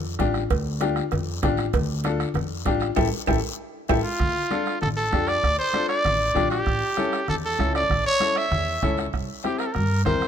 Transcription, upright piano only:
0.19 0.41 D4 medium
0.19 0.41 F4 medium
0.19 0.41 G4 medium
0.80 1.02 D4 medium
0.80 1.02 F4 medium
0.80 1.03 G4 medium
1.43 1.64 D4 medium
1.43 1.64 F4 medium
1.43 1.65 G4 medium
2.04 2.26 D4 medium
2.04 2.26 F4 medium
2.04 2.26 A4 medium
2.66 2.87 D4 medium
2.66 2.87 F4 medium
2.66 2.88 G4 medium
2.96 3.06 E4 medium
2.96 3.06 G4 medium
2.96 3.06 A4 medium
3.27 3.37 E4 medium
3.27 3.37 G4 medium
3.27 3.37 A4 medium
3.89 3.99 E4 medium
3.89 3.99 G4 medium
3.89 3.99 A4 medium
4.51 4.72 D4 medium
4.51 4.73 F4 medium
4.51 4.73 A4 medium
5.13 5.34 D4 medium
5.13 5.34 F4 medium
5.13 5.35 G4 medium
5.74 5.96 D4 medium
5.74 5.96 F4 medium
5.74 5.96 A4 medium
6.35 6.57 D4 medium
6.35 6.57 F4 medium
6.35 6.57 G4 medium
6.97 7.19 C#4 medium
6.97 7.19 E4 medium
6.97 7.19 A4 medium
7.59 7.81 C#4 medium
7.59 7.81 E4 medium
7.59 7.81 A4 medium
8.20 8.42 C#4 medium
8.20 8.42 E4 medium
8.20 8.43 A4 medium
8.82 9.04 C#4 medium
8.82 9.04 E4 medium
8.82 9.04 A4 medium
9.44 9.66 C4 medium
9.44 9.66 E4 medium
9.44 9.66 G4 medium
10.06 10.28 C4 medium
10.06 10.28 E4 medium
10.06 10.28 A#4 medium

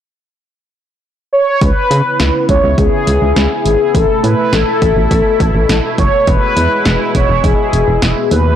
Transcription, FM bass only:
1.62 1.73 C#2 loud
1.91 2.02 C#3 loud
2.20 2.31 C#2 loud
2.49 2.60 C#2 loud
2.64 2.75 C#2 medium
2.78 2.89 C#2 loud
3.07 3.18 C#2 loud
3.22 3.33 C#2 loud
3.36 3.47 C#2 loud
3.65 3.77 G#1 medium
3.95 4.06 A1 loud
4.24 4.35 A2 loud
4.53 4.64 A1 loud
4.82 4.93 A1 loud
4.97 5.08 A1 medium
5.11 5.22 A1 loud
5.40 5.51 A1 loud
5.55 5.66 A1 medium
5.69 5.80 A1 loud
5.98 6.10 F#1 medium
6.28 6.39 E1 loud
6.57 6.68 E2 loud
6.86 6.97 E1 loud
7.15 7.26 E1 loud
7.29 7.41 E1 loud
7.44 7.55 E1 loud
7.73 7.84 E1 loud
7.88 7.99 E1 medium
8.02 8.14 E1 loud
8.31 8.56 D#2 loud

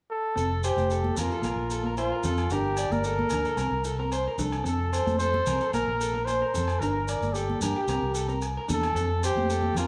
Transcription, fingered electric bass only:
0.37 0.70 F1 medium
0.77 1.10 F1 medium
1.17 1.29 F2 medium
1.43 1.55 A#1 medium
1.56 2.11 A#1 medium
2.24 2.46 F2 medium
2.50 2.84 G1 medium
2.90 3.24 G1 medium
3.30 3.43 D2 medium
3.57 3.69 C2 medium
3.71 4.26 C2 medium
4.38 4.61 C2 medium
4.65 4.99 F2 medium
5.06 5.39 F2 medium
5.47 5.58 C2 medium
5.73 5.85 A#1 medium
5.88 6.42 A#1 medium
6.55 6.77 F2 medium
6.81 7.14 G1 medium
7.21 7.54 G1 medium
7.61 7.73 G2 medium
7.87 7.99 C2 medium
8.02 8.57 C2 medium
8.69 8.91 E2 medium
8.95 9.29 F2 medium
9.35 9.68 F2 medium
9.76 9.87 F2 medium

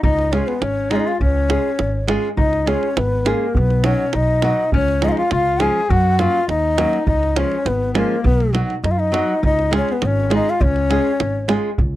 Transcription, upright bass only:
0.03 0.39 C#2 loud
0.61 0.97 G#1 medium
1.21 1.56 C#2 loud
1.80 2.15 G#1 medium
2.37 2.72 C#2 loud
2.97 3.32 G#1 medium
3.57 3.91 B1 loud
4.14 4.49 B1 medium
4.74 5.08 C#2 loud
5.32 5.67 C#2 loud
5.90 6.25 F#2 loud
6.48 6.84 D#2 medium
7.07 7.42 C#2 loud
7.65 8.01 G#1 medium
8.24 8.60 B1 loud
8.83 9.19 F#2 medium
9.43 9.78 C#2 loud
10.02 10.38 G#1 loud
10.61 10.96 C#2 loud
11.20 11.56 G#1 medium
11.78 11.96 C#2 loud

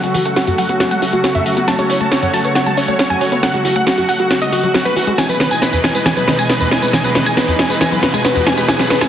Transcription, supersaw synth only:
0.04 0.13 F#4 medium
0.14 0.24 F#4 medium
0.25 0.35 F#5 medium
0.36 0.45 F#4 medium
0.47 0.56 F#4 medium
0.58 0.67 F#5 medium
0.69 0.78 F#4 medium
0.80 0.89 F#4 medium
0.91 1.00 F#5 medium
1.02 1.11 F#4 medium
1.13 1.22 F#4 medium
1.24 1.33 F#4 medium
1.35 1.44 E5 medium
1.46 1.55 F#4 medium
1.57 1.66 F#4 medium
1.68 1.77 A5 loud
1.79 1.88 C#5 medium
1.90 1.99 C#5 medium
2.01 2.10 A5 medium
2.12 2.21 C#5 medium
2.22 2.32 C#5 medium
2.33 2.43 A5 medium
2.44 2.54 C#5 medium
2.55 2.64 C#5 medium
2.66 2.75 A5 medium
2.77 2.86 C#5 medium
2.88 2.97 C#5 medium
2.99 3.08 C#5 medium
3.10 3.19 G#5 medium
3.21 3.30 C#5 medium
3.32 3.41 C#5 medium
3.43 3.52 F#5 loud
3.54 3.63 F#4 medium
3.65 3.74 F#4 medium
3.76 3.85 F#5 loud
3.87 3.96 F#4 medium
3.98 4.07 F#4 medium
4.09 4.18 F#5 medium
4.20 4.29 F#4 medium
4.31 4.40 F#4 medium
4.42 4.51 D#5 medium
4.53 4.62 F#4 medium
4.63 4.73 F#4 medium
4.74 4.83 F#4 medium
4.85 4.94 B4 medium
4.96 5.05 F#4 medium
5.07 5.16 F#4 medium
5.18 5.27 G#5 medium
5.29 5.38 B4 medium
5.40 5.49 B4 medium
5.51 5.60 G#5 medium
5.62 5.71 B4 medium
5.73 5.82 B4 medium
5.84 5.93 G#5 medium
5.95 6.04 B4 medium
6.06 6.15 G#5 medium
6.17 6.26 B4 medium
6.28 6.37 B4 medium
6.39 6.48 G#5 medium
6.50 6.59 B4 medium
6.60 6.70 B4 medium
6.71 6.81 G#5 medium
6.82 6.91 B4 medium
6.93 7.02 G#5 medium
7.04 7.13 B4 medium
7.15 7.24 B4 medium
7.26 7.35 G#5 medium
7.37 7.46 B4 medium
7.48 7.57 B4 medium
7.59 7.68 G#5 medium
7.70 7.79 B4 medium
7.81 7.90 G#5 medium
7.92 8.01 B4 medium
8.03 8.12 B4 medium
8.14 8.23 G#5 medium
8.25 8.34 B4 medium
8.36 8.45 B4 medium
8.47 8.56 G#5 medium
8.58 8.67 B4 medium
8.68 8.78 G#5 loud
8.79 8.89 B4 medium
8.90 9.00 B4 medium
9.01 9.08 G#5 loud

